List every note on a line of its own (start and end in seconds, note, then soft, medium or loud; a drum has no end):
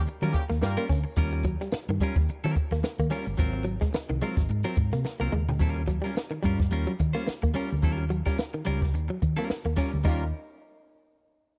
0.07 muted fingered electric bass stroke medium
0.07 muted clean electric guitar stroke soft
0.07 closed hi-hat medium
0.21 0.32 D#3 loud
0.21 0.30 F#3 medium
0.21 0.31 G3 medium
0.21 0.34 G3 medium
0.21 0.31 A#3 loud
0.21 0.34 C#4 medium
0.21 0.31 F4 medium
0.21 0.35 F4 medium
0.21 0.31 A#4 loud
0.21 0.35 A#4 medium
0.33 0.43 C#3 medium
0.33 0.43 G3 medium
0.33 0.43 A#3 medium
0.33 0.43 G4 loud
0.33 muted clean electric guitar stroke soft
0.33 kick medium
0.33 closed hi-hat medium
0.50 0.60 D#2 medium
0.50 0.57 A#3 medium
0.50 muted clean electric guitar stroke medium
0.50 snare soft
0.61 0.75 G2 loud
0.61 0.83 G3 loud
0.61 0.84 A#3 loud
0.61 0.84 F4 loud
0.61 0.84 A#4 loud
0.61 muted clean electric guitar stroke soft
0.61 snare loud
0.61 closed hi-hat medium
0.77 0.87 G3 medium
0.77 0.85 A#3 medium
0.77 0.88 C#4 medium
0.77 0.88 F4 medium
0.77 0.89 A#4 medium
0.77 closed hi-hat medium
0.89 1.03 D2 loud
0.89 0.99 C#4 medium
0.89 muted clean electric guitar stroke medium
0.89 kick medium
0.89 snare soft
0.89 open hi-hat medium
1.04 muted clean electric guitar stroke soft
1.17 1.55 D#2 medium
1.17 1.43 G3 medium
1.17 1.43 C#4 medium
1.17 1.43 F4 medium
1.17 1.43 A#4 loud
1.17 kick loud
1.17 closed hi-hat medium
1.33 muted clean electric guitar stroke soft
1.44 1.54 F#3 medium
1.44 kick loud
1.44 closed hi-hat medium
1.60 1.68 G3 medium
1.60 muted clean electric guitar stroke soft
1.60 snare soft
1.72 muted fingered electric bass stroke soft
1.72 muted clean electric guitar stroke soft
1.72 snare loud
1.72 closed hi-hat loud
1.89 1.99 G2 medium
1.89 1.97 D#3 medium
1.89 muted clean electric guitar stroke medium
2.00 2.20 G3 medium
2.00 2.10 G3 medium
2.00 2.18 C#4 medium
2.00 2.17 F4 medium
2.00 2.16 A#4 medium
2.00 kick medium
2.00 closed hi-hat medium
2.16 2.27 D#2 medium
2.16 muted clean electric guitar stroke soft
2.16 kick loud
2.29 muted clean electric guitar stroke soft
2.29 closed hi-hat medium
2.44 2.55 D#3 medium
2.44 2.52 F#3 medium
2.44 2.54 G3 medium
2.44 2.55 C#4 medium
2.44 2.55 F4 medium
2.44 2.56 A#4 medium
2.44 closed hi-hat soft
2.55 muted clean electric guitar stroke soft
2.55 kick loud
2.55 closed hi-hat medium
2.71 2.82 D#2 medium
2.71 2.79 A#3 medium
2.71 muted clean electric guitar stroke medium
2.71 snare soft
2.83 muted clean electric guitar stroke soft
2.83 snare loud
2.83 closed hi-hat medium
2.99 3.10 D#3 loud
2.99 3.07 A#3 medium
2.99 kick medium
2.99 closed hi-hat medium
3.10 3.26 G3 medium
3.10 3.20 C#4 medium
3.10 3.26 C#4 medium
3.10 3.25 F4 medium
3.10 3.25 A#4 medium
3.10 snare soft
3.10 open hi-hat medium
3.26 3.37 G1 loud
3.26 muted clean electric guitar stroke soft
3.37 3.77 G#1 loud
3.37 3.64 F#3 medium
3.37 3.64 C4 medium
3.37 3.65 F4 medium
3.37 3.65 A#4 medium
3.37 kick loud
3.37 closed hi-hat medium
3.53 muted clean electric guitar stroke soft
3.65 3.74 F#3 medium
3.65 closed hi-hat medium
3.81 3.89 G#3 medium
3.81 muted clean electric guitar stroke medium
3.81 kick medium
3.81 snare soft
3.94 muted clean electric guitar stroke soft
3.94 muted fingered electric bass stroke soft
3.94 snare loud
3.94 closed hi-hat loud
4.09 4.20 C2 medium
4.09 4.17 D#3 medium
4.09 muted clean electric guitar stroke soft
4.21 4.41 F#3 medium
4.21 4.31 G#3 medium
4.21 4.37 C4 medium
4.21 4.36 F4 medium
4.21 4.35 A#4 medium
4.21 closed hi-hat medium
4.36 4.48 G#1 medium
4.36 muted clean electric guitar stroke soft
4.36 kick loud
4.36 snare soft
4.49 4.63 G#2 loud
4.49 muted clean electric guitar stroke soft
4.49 closed hi-hat medium
4.64 4.72 F#3 medium
4.64 4.77 F#3 medium
4.64 4.77 C4 medium
4.64 4.77 F4 medium
4.64 4.77 A#4 medium
4.64 closed hi-hat soft
4.75 4.91 G#2 loud
4.75 muted clean electric guitar stroke soft
4.75 kick loud
4.75 closed hi-hat medium
4.92 5.03 C3 loud
4.92 5.00 A#3 medium
4.92 muted clean electric guitar stroke soft
4.92 snare soft
5.05 muted clean electric guitar stroke soft
5.05 snare medium
5.20 5.31 C2 loud
5.20 5.33 F#3 medium
5.20 5.27 A#3 medium
5.20 5.33 C4 medium
5.20 5.33 F4 medium
5.20 5.33 A#4 medium
5.32 5.46 D#2 medium
5.32 5.42 G#3 medium
5.32 muted clean electric guitar stroke soft
5.32 mid tom medium
5.48 5.59 D2 medium
5.48 muted clean electric guitar stroke soft
5.48 floor tom loud
5.59 5.98 D#2 loud
5.59 5.81 G3 medium
5.59 5.82 C#4 medium
5.59 5.82 F4 medium
5.59 5.82 A#4 medium
5.59 kick loud
5.59 closed hi-hat medium
5.76 muted clean electric guitar stroke soft
5.88 5.97 F#3 medium
5.88 muted clean electric guitar stroke soft
5.88 kick medium
5.88 closed hi-hat medium
6.02 6.10 G3 medium
6.02 6.16 F4 medium
6.02 6.16 A#4 medium
6.02 snare soft
6.06 6.15 G3 soft
6.06 6.15 C#4 soft
6.16 muted clean electric guitar stroke soft
6.16 snare loud
6.16 closed hi-hat medium
6.31 6.38 D#3 medium
6.31 muted clean electric guitar stroke soft
6.43 6.68 G2 loud
6.43 6.52 G3 medium
6.43 6.63 G3 medium
6.43 6.60 C#4 medium
6.43 6.60 F4 loud
6.43 6.58 A#4 medium
6.43 kick medium
6.43 closed hi-hat medium
6.60 muted clean electric guitar stroke soft
6.60 kick loud
6.60 snare soft
6.71 6.85 D#2 loud
6.71 6.91 G3 medium
6.71 6.91 C#4 medium
6.71 6.91 F4 medium
6.71 6.91 A#4 loud
6.71 closed hi-hat medium
6.87 6.94 F#3 medium
6.87 closed hi-hat soft
6.99 7.13 D#3 loud
6.99 muted clean electric guitar stroke soft
6.99 kick medium
6.99 closed hi-hat medium
7.13 7.28 G3 medium
7.13 7.22 A#3 medium
7.13 7.27 C#4 medium
7.13 7.27 F4 medium
7.13 7.27 C5 medium
7.13 snare soft
7.27 muted clean electric guitar stroke soft
7.27 muted fingered electric bass stroke soft
7.27 snare loud
7.27 closed hi-hat medium
7.42 7.54 D#2 medium
7.42 7.50 A#3 medium
7.42 muted clean electric guitar stroke medium
7.42 kick medium
7.42 closed hi-hat medium
7.54 7.74 G3 medium
7.54 7.71 C#4 loud
7.54 7.65 C#4 medium
7.54 7.70 F4 loud
7.54 7.69 A#4 loud
7.54 snare soft
7.54 open hi-hat medium
7.70 7.83 D2 loud
7.70 muted clean electric guitar stroke medium
7.82 8.21 D#2 loud
7.82 8.03 G3 medium
7.82 8.04 C#4 medium
7.82 8.04 F4 medium
7.82 8.04 A#4 medium
7.82 kick loud
7.82 closed hi-hat medium
7.98 muted clean electric guitar stroke soft
8.10 8.19 F#3 medium
8.10 muted clean electric guitar stroke soft
8.10 closed hi-hat medium
8.26 8.33 G3 medium
8.26 8.38 G3 soft
8.26 8.38 C#4 soft
8.26 8.38 F4 medium
8.26 8.38 A#4 medium
8.26 kick medium
8.26 snare soft
8.38 muted clean electric guitar stroke soft
8.38 snare loud
8.38 closed hi-hat loud
8.54 8.61 D#3 medium
8.54 muted clean electric guitar stroke soft
8.65 8.94 C#2 medium
8.65 8.85 G3 medium
8.65 8.76 G3 medium
8.65 8.82 C#4 medium
8.65 8.81 F4 medium
8.65 8.81 A#4 loud
8.65 closed hi-hat medium
8.82 muted clean electric guitar stroke medium
8.82 kick loud
8.82 snare soft
8.94 9.08 D#2 medium
8.94 muted clean electric guitar stroke soft
8.94 closed hi-hat medium
9.08 9.17 F#3 medium
9.08 muted clean electric guitar stroke soft
9.22 9.36 D#3 loud
9.22 muted clean electric guitar stroke soft
9.22 kick medium
9.22 closed hi-hat medium
9.37 9.48 G3 medium
9.37 9.45 A#3 medium
9.37 9.49 C#4 medium
9.37 9.49 F4 medium
9.37 9.49 A#4 medium
9.37 snare soft
9.49 muted clean electric guitar stroke soft
9.49 muted fingered electric bass stroke medium
9.49 snare loud
9.49 closed hi-hat medium
9.65 9.76 D#2 medium
9.65 9.73 A#3 medium
9.65 muted clean electric guitar stroke soft
9.65 closed hi-hat medium
9.77 9.96 G3 medium
9.77 9.92 C#4 loud
9.77 9.87 C#4 medium
9.77 9.92 F4 loud
9.77 9.90 A#4 loud
9.77 kick medium
9.77 snare soft
9.77 open hi-hat medium
9.92 10.04 D2 medium
9.92 muted clean electric guitar stroke medium
10.04 10.31 D#2 medium
10.04 10.22 G3 medium
10.04 10.24 G3 loud
10.04 10.24 A#3 medium
10.04 10.23 C#4 medium
10.04 10.21 D#4 medium
10.04 10.23 F4 medium
10.04 10.25 F4 loud
10.04 10.24 A#4 loud
10.04 10.23 A#4 medium
10.04 kick loud
10.04 crash medium